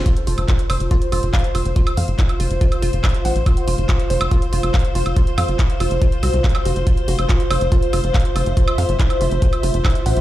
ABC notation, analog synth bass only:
X:1
M:4/4
L:1/16
Q:1/4=141
K:none
V:1 name="Analog synth bass" clef=bass
z2 F,,, F,,, z2 F,,, F,,, z2 F,,, F,,, z2 F,,, F,,, | z2 F,, _G,,, z2 F,,, F,,, z2 F,,, F,,, z2 A,,, A,,, | z2 F,,, F,,, z2 F,,, F,,, z2 F,,, F,,, z2 F,,, F,,, | z2 F,, _G,,, z2 F,,, F,,, z2 C,, C,, z2 F,,, F,,, |
z2 F,,, F,,, z2 F,,, F,,, z2 F,,, F,,, z2 F,,, F,,, | z2 F,, _G,,, z2 F,,, F,,, z2 F,,, F,,, z2 A,,, A,,, |]